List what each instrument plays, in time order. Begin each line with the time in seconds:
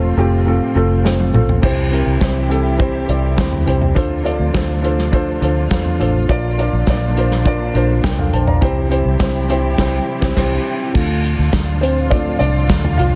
Already playing: fingered electric bass E1, string section A2 C3 F3 C4 F4, felt piano A3 C4 F4 A4 C5
0.17 fingered electric bass F1, felt piano A3 C4 F4 G4
0.46 felt piano A3 C4 F4 A4
0.75 fingered electric bass F1, felt piano A3 C4 F4 A4
1.04 felt piano A3 C4 F4 C5, snare
1.20 high tom
1.33 fingered electric bass A#1, felt piano A3 C4 F4 A4, mid tom
1.49 floor tom
1.62 fingered electric bass C2, felt piano C3 C4 E4 G4 C5, string section C3 E3 G3 E4 G4, kick, crash
1.91 felt piano C4 E4 G4 A#4, closed hi-hat
2.06 fingered electric bass C2
2.21 fingered electric bass C2, felt piano C4 E4 G4 C5, kick, snare, closed hi-hat
2.49 felt piano C4 E4 G4 A4, closed hi-hat
2.78 felt piano C4 E4 G4 C5, kick, closed hi-hat
3.08 fingered electric bass C2, felt piano C4 E4 G4 D5, closed hi-hat
3.37 felt piano C4 E4 G4 C5, kick, snare, closed hi-hat
3.53 floor tom
3.66 fingered electric bass C2, felt piano C4 E4 G4 C5, closed hi-hat
3.81 floor tom
3.95 fingered electric bass D2, felt piano D3 D4 F4 A4 C5, string section F3 A3 D4 F4, kick, closed hi-hat
4.23 felt piano D4 F4 A4 D5, closed hi-hat
4.39 fingered electric bass D2
4.54 fingered electric bass D2, felt piano D4 F4 A4 C5, kick, snare, closed hi-hat
4.82 felt piano D4 F4 A4 C5, closed hi-hat
4.99 snare
5.12 felt piano D4 F4 A4 C5, kick, closed hi-hat
5.41 fingered electric bass D2, felt piano D4 F4 A4 C5, closed hi-hat
5.70 felt piano D4 F4 A4 C5, kick, snare, closed hi-hat
5.86 floor tom
5.99 fingered electric bass A1, felt piano D4 F4 A4 C5, closed hi-hat
6.29 fingered electric bass A#1, felt piano A#2 D4 F4 A#4 D5, string section A#2 D3 F3 D4, kick, closed hi-hat
6.58 felt piano D4 F4 A#4 D5, closed hi-hat
6.73 fingered electric bass A#1
6.87 felt piano D4 F4 A#4 D5, kick, snare, closed hi-hat
7.16 felt piano D4 F4 A#4 C5, closed hi-hat
7.31 snare
7.45 felt piano D4 F4 A#4 D5, kick, closed hi-hat
7.74 fingered electric bass A#1, felt piano D4 F4 A#4 C5, closed hi-hat
8.04 fingered electric bass C2, felt piano A#4 G5, kick, snare, closed hi-hat
8.19 felt piano A4 F5, floor tom
8.33 fingered electric bass A#1, felt piano C5 A5, closed hi-hat
8.47 felt piano D5 A#5, floor tom
8.61 fingered electric bass C2, string section C3 E3 G3 E4 G4, felt piano C3 C4 E4 G4 C5, kick, closed hi-hat
8.89 felt piano C4 E4 G4 C5, closed hi-hat
9.05 fingered electric bass C2
9.19 fingered electric bass C2, felt piano C4 E4 G4 C5, kick, snare, closed hi-hat
9.49 felt piano C4 E4 G4 C5, closed hi-hat
9.78 fingered electric bass C2, felt piano C4 E4 G4 C5, kick, snare, crash
10.21 fingered electric bass C2, felt piano C4 E4 G4 C5, kick, snare
10.35 fingered electric bass C2, felt piano C4 E4 G4 C5, kick, snare, crash
10.94 fingered electric bass D2, string section A2 D3 F3 D4 F4, felt piano A3 D4 F4, kick, crash, tambourine
11.24 closed hi-hat, tambourine
11.39 fingered electric bass D2, tambourine
11.52 kick, snare, closed hi-hat, tambourine
11.69 tambourine
11.81 felt piano C4 C5, closed hi-hat, tambourine
11.98 tambourine
12.10 felt piano A3 D4 F4 D5, kick, closed hi-hat, tambourine
12.39 fingered electric bass C2, felt piano D4 D5, closed hi-hat, tambourine
12.69 fingered electric bass D2, kick, snare, closed hi-hat, tambourine
12.84 floor tom
12.98 fingered electric bass C2, felt piano F4 F5, closed hi-hat, tambourine